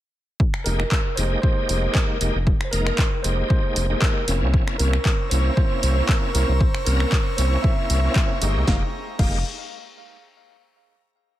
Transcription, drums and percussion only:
0.40 kick loud
0.54 finger snap medium
0.66 open hi-hat loud
0.80 finger snap medium
0.92 kick loud
0.92 clap loud
1.17 open hi-hat loud
1.43 kick loud
1.69 open hi-hat loud
1.95 kick loud
1.95 clap loud
2.21 open hi-hat loud
2.47 kick loud
2.61 finger snap medium
2.73 open hi-hat loud
2.87 finger snap medium
2.98 kick loud
2.98 clap loud
3.24 open hi-hat loud
3.50 kick loud
3.76 open hi-hat loud
4.02 kick loud
4.02 clap loud
4.28 open hi-hat loud
4.54 kick loud
4.68 finger snap medium
4.79 open hi-hat loud
4.93 finger snap medium
5.05 kick loud
5.05 clap loud
5.31 open hi-hat loud
5.57 kick loud
5.83 open hi-hat loud
6.09 kick loud
6.09 clap loud
6.35 open hi-hat loud
6.61 kick loud
6.75 finger snap medium
6.86 open hi-hat loud
7.00 finger snap medium
7.12 kick loud
7.12 clap loud
7.38 open hi-hat loud
7.64 kick loud
7.90 open hi-hat loud
8.16 kick loud
8.16 clap loud
8.42 open hi-hat loud
8.67 kick loud
8.67 snare medium
9.19 kick loud
9.19 crash medium

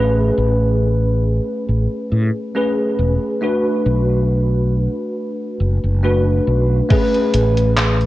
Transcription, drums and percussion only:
6.90 kick loud
6.90 closed hi-hat medium
6.90 crash loud
7.14 closed hi-hat soft
7.34 closed hi-hat medium
7.57 closed hi-hat medium
7.77 clap loud
7.77 closed hi-hat medium
8.01 closed hi-hat soft

